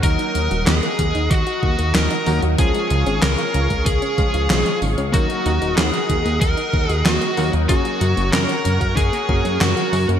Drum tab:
HH |xxxxxxxxxx-xxxox|xxxxxxxxxxxxxxox|xxxxxxxxxx-xxxox|xxxxxxxxxx-xxxox|
CP |----x-------x---|----x-------x---|----x-------x---|----x-------x---|
SD |----o-------o---|----o-------o---|----o-------o---|----o-------o---|
BD |o-----o-o-o-----|o------oo-o-----|o-----o-o-o-----|o------oo-o-----|